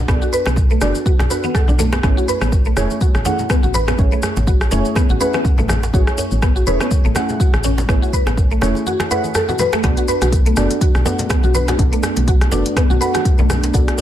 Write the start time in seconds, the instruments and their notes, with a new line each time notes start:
0.08 fm bass B1, synth arpeggio sound B3, synth stab B3 D4 F#4 A4 D5, kick, cross-stick, muted conga, djembe tone, high conga, maracas
0.22 synth arpeggio sound F#4, maracas
0.33 synth arpeggio sound B4, djembe tone, maracas
0.46 fm bass B1, synth arpeggio sound B3, cross-stick, djembe slap, maracas
0.56 kick, djembe tone, maracas
0.70 synth arpeggio sound A3, maracas
0.81 fm bass F#1, synth stab B3 D4 F#4 A4 D5, cross-stick, djembe slap, djembe tone, maracas
0.95 muted conga, maracas
1.06 synth arpeggio sound F#4, kick, djembe tone, high conga, maracas
1.19 fm bass B1, cross-stick, djembe slap, high conga, maracas
1.30 synth stab B3 D4 F#4 A4 F#5, synth arpeggio sound B4, muted conga, djembe tone, maracas
1.44 synth arpeggio sound B3, high conga, maracas
1.54 synth arpeggio sound A4, kick, cross-stick, djembe tone, maracas
1.68 fm bass B1, synth arpeggio sound D4, muted conga, high conga, low conga, maracas
1.78 synth arpeggio sound A3, high conga, djembe tone, low conga, maracas
1.93 synth arpeggio sound B3, cross-stick, djembe slap, maracas
2.03 fm bass A1, synth stab A3 C#4 E4 G#4 C#5, synth arpeggio sound B3, kick, cross-stick, muted conga, high conga, djembe tone, maracas
2.17 synth arpeggio sound F#4, maracas
2.28 synth arpeggio sound B4, djembe tone, maracas
2.41 fm bass A1, synth arpeggio sound B3, cross-stick, maracas
2.51 kick, muted conga, djembe tone, maracas
2.65 synth arpeggio sound A3, maracas
2.77 fm bass E1, synth stab A3 C#4 E4 G#4 C#5, cross-stick, djembe tone, maracas
2.90 muted conga, maracas
3.01 synth arpeggio sound F#4, kick, djembe tone, high conga, maracas
3.15 fm bass A1, cross-stick, maracas
3.25 synth stab A3 C#4 E4 G#4 F#5, synth arpeggio sound C#4, muted conga, djembe slap, djembe tone, high conga, maracas
3.39 low conga, maracas
3.50 synth arpeggio sound B3, kick, cross-stick, djembe tone, maracas
3.63 fm bass A1, synth arpeggio sound F#4, muted conga, maracas
3.74 synth arpeggio sound B4, high conga, djembe tone, maracas
3.88 synth arpeggio sound B3, cross-stick, djembe slap, low conga, maracas
3.98 fm bass A1, synth stab A3 C#4 E4 G#4 C#5, kick, muted conga, djembe tone, high conga, maracas
4.12 synth arpeggio sound A3, maracas
4.22 cross-stick, djembe tone, maracas
4.36 fm bass A1, djembe slap, maracas
4.47 synth arpeggio sound F#4, kick, muted conga, djembe tone, maracas
4.61 cross-stick, maracas
4.71 fm bass E1, synth stab A3 C#4 E4 G#4 C#5, synth arpeggio sound C#4, djembe slap, djembe tone, maracas
4.85 muted conga, maracas
4.95 synth arpeggio sound B3, kick, cross-stick, djembe tone, high conga, maracas
5.09 fm bass A1, synth arpeggio sound F#4, high conga, maracas
5.20 synth stab A3 C#4 E4 G#4 F#5, synth arpeggio sound B4, muted conga, djembe tone, maracas
5.33 synth arpeggio sound B3, cross-stick, high conga, maracas
5.45 kick, djembe tone, maracas
5.58 fm bass A1, synth arpeggio sound A3, muted conga, high conga, low conga, maracas
5.68 cross-stick, high conga, djembe tone, low conga, maracas
5.83 djembe slap, maracas
5.93 fm bass A1, synth stab A3 C#4 E4 G#4 C#5, synth arpeggio sound F#4, kick, muted conga, high conga, djembe tone, maracas
6.07 cross-stick, maracas
6.18 synth arpeggio sound C#4, djembe tone, maracas
6.31 fm bass A1, maracas
6.42 synth arpeggio sound B3, kick, cross-stick, muted conga, djembe tone, maracas
6.56 synth arpeggio sound F#4, maracas
6.67 fm bass E1, synth stab A3 C#4 E4 G#4 C#5, synth arpeggio sound B4, djembe tone, maracas
6.80 synth arpeggio sound B3, cross-stick, muted conga, maracas
6.91 kick, djembe tone, high conga, maracas
7.05 fm bass A1, synth arpeggio sound A3, maracas
7.15 synth stab A3 C#4 E4 G#4 F#5, cross-stick, muted conga, djembe slap, djembe tone, high conga, maracas
7.29 low conga, maracas
7.40 synth arpeggio sound F#4, kick, djembe tone, maracas
7.53 fm bass A1, cross-stick, muted conga, maracas
7.64 synth arpeggio sound C#4, high conga, djembe tone, maracas
7.78 djembe slap, low conga, maracas
7.89 fm bass A1, synth stab A3 C#4 E4 G#4 C#5, synth arpeggio sound B3, kick, cross-stick, muted conga, djembe tone, high conga, maracas
8.02 synth arpeggio sound F#4, maracas
8.13 synth arpeggio sound B4, kick, djembe tone, maracas
8.27 fm bass A1, synth arpeggio sound B3, cross-stick, djembe slap, maracas
8.37 kick, muted conga, djembe tone, maracas
8.51 synth arpeggio sound A3, maracas
8.61 fm bass E1, synth stab A3 C#4 E4 G#4 C#5, cross-stick, djembe slap, djembe tone, maracas
8.75 muted conga, maracas
8.86 synth arpeggio sound F#4, high conga, djembe tone, maracas
8.99 cross-stick, djembe slap, high conga, maracas
9.11 synth stab A3 C#4 E4 G#4 F#5, synth arpeggio sound B4, muted conga, djembe tone, maracas
9.24 high conga, maracas
9.34 synth arpeggio sound A4, cross-stick, djembe tone, maracas
9.48 synth arpeggio sound F#4, muted conga, high conga, low conga, maracas
9.59 synth arpeggio sound B4, high conga, djembe tone, low conga, maracas
9.73 synth arpeggio sound A3, cross-stick, djembe slap, maracas
9.83 fm bass B1, analog synth pad A3 B3 D4, synth arpeggio sound B3, synth stab B3 D4 F#4 A4 D5, kick, cross-stick, closed hi-hat, muted conga, high conga, djembe tone, maracas
9.97 synth arpeggio sound F#4, closed hi-hat, maracas
10.08 synth arpeggio sound B4, djembe tone, maracas
10.22 fm bass B1, synth arpeggio sound F#4, cross-stick, closed hi-hat, maracas
10.32 kick, closed hi-hat, muted conga, djembe tone, maracas
10.46 synth arpeggio sound A3, closed hi-hat, maracas
10.56 fm bass F#1, synth stab B3 D4 F#4 A4 D5, cross-stick, djembe tone, maracas
10.71 closed hi-hat, muted conga, maracas
10.81 synth arpeggio sound F#4, kick, closed hi-hat, high conga, djembe tone, maracas
10.95 fm bass B1, cross-stick, maracas
11.05 synth stab B3 D4 F#4 A4 F#5, synth arpeggio sound D4, djembe slap, muted conga, high conga, djembe tone, maracas
11.19 closed hi-hat, low conga, maracas
11.29 synth arpeggio sound B3, kick, cross-stick, closed hi-hat, djembe tone, maracas
11.43 fm bass B1, synth arpeggio sound F#4, muted conga, maracas
11.54 synth arpeggio sound B4, djembe tone, high conga, maracas
11.68 synth arpeggio sound F#4, cross-stick, closed hi-hat, djembe slap, low conga, maracas
11.79 fm bass B1, synth stab B3 D4 F#4 A4 D5, kick, closed hi-hat, muted conga, djembe tone, high conga, maracas
11.92 synth arpeggio sound A3, closed hi-hat, maracas
12.03 cross-stick, djembe tone, maracas
12.16 fm bass B1, closed hi-hat, djembe slap, maracas
12.27 synth arpeggio sound F#4, kick, closed hi-hat, muted conga, djembe tone, maracas
12.41 cross-stick, closed hi-hat, maracas
12.51 fm bass F#1, synth stab B3 D4 F#4 A4 D5, synth arpeggio sound D4, djembe slap, djembe tone, maracas
12.66 closed hi-hat, muted conga, maracas
12.76 synth arpeggio sound B3, kick, cross-stick, closed hi-hat, high conga, djembe tone, maracas
12.90 fm bass B1, synth arpeggio sound F#4, high conga, maracas
13.01 synth stab B3 D4 F#4 A4 F#5, synth arpeggio sound B4, muted conga, djembe tone, maracas
13.14 synth arpeggio sound F#4, cross-stick, closed hi-hat, high conga, maracas
13.25 kick, closed hi-hat, djembe tone, maracas
13.38 fm bass B1, synth arpeggio sound A3, muted conga, high conga, low conga, maracas
13.50 cross-stick, djembe tone, high conga, low conga, maracas
13.63 closed hi-hat, djembe slap, maracas
13.73 fm bass B1, synth stab B3 D4 F#4 A4 D5, synth arpeggio sound F#4, kick, closed hi-hat, muted conga, high conga, djembe tone, maracas
13.88 cross-stick, closed hi-hat, maracas
13.98 djembe tone